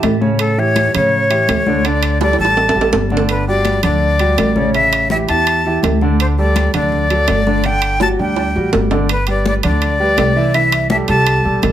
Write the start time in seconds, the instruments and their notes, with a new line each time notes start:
Already playing: grand piano E3 E4 G4
0.03 upright bass A2, high conga, high timbale, low timbale
0.21 grand piano C#3 C#4 C#5, high conga
0.39 flute A4, high conga, high timbale
0.58 grand piano E3 E4 G4, flute C#5, high conga
0.76 high conga, high timbale, low timbale
0.94 upright bass A2, grand piano C#3 C#4 C#5, flute C#5, low conga, high timbale
1.12 high conga
1.30 grand piano E3 E4 G4, high conga, high timbale
1.48 upright bass D2, high conga, high timbale, low timbale
1.66 grand piano D3 D4 D5, high conga
1.84 grand piano D3 D4 D5, flute D5, high conga, high timbale
2.03 high conga, high timbale
2.21 grand piano G3 G4 A4, flute D5, high conga, high timbale
2.33 high timbale
2.38 upright bass A1, grand piano G3 G4 A4, flute A5, high conga
2.45 high timbale
2.57 high conga, low timbale
2.69 low timbale
2.74 upright bass A1, grand piano G3 G4 A4, high conga
2.81 low timbale
2.92 upright bass G1, high conga, low timbale
3.10 grand piano D3 D4 D5, high conga
3.17 low timbale
3.29 flute B4, high timbale
3.47 grand piano G3 F#4 G4, flute D5, high conga
3.65 high conga, high timbale, low timbale
3.83 upright bass D2, grand piano D3 D4 D5, flute D5, low conga, high timbale
4.02 high conga
4.19 grand piano G3 F#4 G4, high conga, high timbale
4.38 upright bass A1, high conga, high timbale, low timbale
4.56 grand piano C#3 C#4 C#5, high conga
4.74 grand piano C#3 C#4 C#5, flute E5, high conga, high timbale
4.92 high conga, high timbale
5.10 grand piano E3 E4 G4, flute E5, high conga, low timbale
5.28 upright bass E2, grand piano E3 E4 G4, flute A5, high conga, high timbale
5.46 high conga, high timbale
5.65 grand piano E3 E4 G4, high conga
5.83 upright bass D2, high conga, high timbale, low timbale
6.01 grand piano D3 D4 D5, high conga
6.19 flute C5, high conga, high timbale
6.38 grand piano G3 G4 A4, flute D5, high conga
6.56 high conga, high timbale, low timbale
6.74 upright bass D2, grand piano D3 D4 D5, flute D5, low conga, high timbale
6.92 high conga, low conga
7.10 grand piano F#3 F#4 A4, high conga, high timbale
7.28 upright bass G1, high conga, high timbale, low timbale
7.47 grand piano D3 D4 D5, high conga
7.64 grand piano D3 D4 D5, flute G5, high timbale
7.82 high conga, high timbale
8.00 grand piano F#3 F#4 G4, flute A5, high conga, high timbale
8.19 upright bass D2, grand piano G3 D4 G4, flute G5, high conga
8.36 high conga, high timbale
8.55 upright bass A1, grand piano G3 F#4 G4, high conga
8.73 upright bass G1, high conga, low timbale
8.91 grand piano D3 D4 D5, high conga, low timbale
9.09 flute B4, high conga, high timbale
9.27 grand piano G3 G4 B4, flute D5, high conga, high timbale
9.45 flute D5, high conga, low timbale
9.63 upright bass D2, grand piano D3 D4 D5, flute D5, high conga, low conga, high timbale
9.82 high conga, high timbale
9.99 grand piano G3 G4 B4, high conga
10.17 upright bass C2, high conga, high timbale, low timbale
10.36 grand piano E3 E4 E5
10.54 grand piano E3 E4 E5, flute E5, high conga, high timbale
10.72 high conga, high timbale
10.90 grand piano G3 G4 A4, flute E5, high conga, low timbale
11.08 upright bass C2, grand piano G3 G4 A4, flute A5, high conga, high timbale
11.26 high conga, high timbale
11.44 upright bass B1, grand piano G3 G4 A4, high conga
11.62 upright bass A1, high conga, high timbale, low timbale